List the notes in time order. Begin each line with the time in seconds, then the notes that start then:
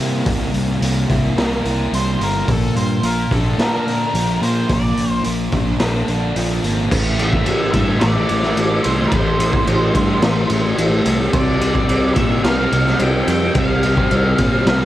Already playing: G3 E4 A#4
0.00 C3 A#3
0.26 C2 C3, kick, open hi-hat
0.54 C2, open hi-hat
0.81 C2 A#3, open hi-hat
1.09 C2 E4, kick, open hi-hat
1.37 C2 A#4, snare, open hi-hat
1.65 C2 E4, open hi-hat
1.92 C2 G3 C5, open hi-hat
2.19 G1 A#3, open hi-hat
2.23 A#4
2.48 A#1 A#2 A4, kick, open hi-hat
2.76 G2 C5, open hi-hat
3.02 A#1 A#3 A#4, open hi-hat
3.31 A#1 D4 A4, kick, open hi-hat
3.58 A#2 A4, snare, open hi-hat
3.62 A#4
3.87 D4, open hi-hat
4.14 A#1 F3, open hi-hat
4.41 A#2 A#3 C5, open hi-hat
4.69 A#1 A#2 D5, kick, open hi-hat
4.97 A#1, open hi-hat
5.24 A#1 A#3, open hi-hat
5.52 A#1 D4, kick, open hi-hat
5.80 A#1 A4, snare, open hi-hat
6.08 A#1 D4, open hi-hat
6.36 A#1 F3, open hi-hat
6.64 G#1 A#3, open hi-hat
6.91 A1 A2 E3 A3, kick, crash
7.19 A2 E3 A3 E5, ride
7.32 E3 A3, kick
7.46 A1 A2 E3 A3, ride
7.72 G2 A2 E5, kick, ride
7.76 E3 A3
7.88 E3 A3
8.00 A1 D5, snare, ride
8.15 E3 A3
8.29 A1 A2 E3 A3, ride
8.42 A3, snare
8.47 E3
8.56 A1 A2 E3 A3, ride
8.70 E3 A3
8.83 C2 C5, ride
8.98 E3 A3
9.08 C5, kick, ride
9.12 A1 A2 E3 A3
9.40 A2 E3 A3, ride
9.52 E3 A3, kick
9.65 A1 A2 E3 A3, ride
9.94 G2 A2 E3 A3, kick, ride
10.07 E3 A3
10.22 A1, snare, ride
10.35 E3 A3
10.48 A1 A2 E3 A3, ride
10.62 E3 A3
10.76 A1 A2 E3 A3, ride
10.89 E3 A3
11.05 C2, ride
11.16 E3 A3
11.31 C2 C3 G3 C4 D5, kick, ride
11.58 C3 G3 C4, ride
11.73 G3 C4, kick
11.87 C2 C3 G3 C4, ride
12.14 A#2 C3 G3 E5, kick, ride
12.18 C4
12.30 G3 C4
12.43 C2 F5, snare, ride
12.58 G3 C4
12.72 C2 C3 G3 C4, ride
12.86 G3 C4, snare
12.99 C2 C3 G3 G5, ride
13.03 C4
13.14 G3 C4
13.27 F2, ride
13.42 G3 C4
13.55 C2 C3 G3 C4, kick, ride
13.59 F5
13.83 C3 G3 C4, ride
13.96 G3 C4, kick
14.10 C2 C3 G3 C4, ride
14.37 A#2 C3 G3 C4, kick, ride
14.52 G3 C4
14.66 C2, snare, ride
14.78 G3 C4